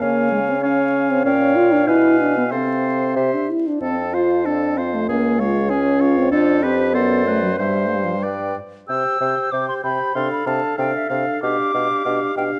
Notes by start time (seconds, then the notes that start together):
0.00 C#3 A#3 C#5 F5 G#5
0.32 G#3
0.49 C4
0.63 C#4 C#5 F5 G#5
1.11 C4
1.24 A#2 C#4 C#5 F5 G5
1.56 F4
1.73 D4
1.87 B2 E4 B4 F5 G#5
2.19 D4
2.38 B3
2.51 C3 C4 A4 C5 F5
3.16 C3 G4 C5 E5
3.34 D4
3.49 E4
3.67 D4
3.80 F2 C4 A4 A5
4.14 F4 C5 F5
4.45 C4 D4 A4 A5
4.77 C4 F4 C5 F5
4.94 A3
5.08 C#2 A#3 C#4 G#4 G#5
5.38 G#3 F4 C#5 F5
5.69 C#4 G#4 G#5
6.00 F4 C#5 F5
6.17 C4
6.31 F2 D4 F4 A4 C5
6.63 C4 G4 B4
6.93 F#2 B3 A4 C5 D5
7.26 A3 B4
7.43 F#3
7.58 G2 G3 C5 E5
7.86 A3
7.90 F5
7.96 G3
8.04 F3
8.14 G3
8.23 B4 D5 G5
8.88 C3 G4 C5 G5 E6
9.20 C3 G4 C5 G5
9.52 C3 G4 C5 G5 D6
9.68 C6
9.83 C3 G4 C5 G5 B5
10.15 C3 D4 A4 F5 C6
10.32 B5
10.46 C3 D4 A4 F5 A5
10.77 C3 D4 A4 F5 G5
10.95 E5
11.10 C3 D4 A4 F5
11.42 B2 D4 G4 F5 D6
11.73 B2 D4 G4 F5
12.05 B2 D4 G4 F5
12.35 B2 D4 G4 F5 G5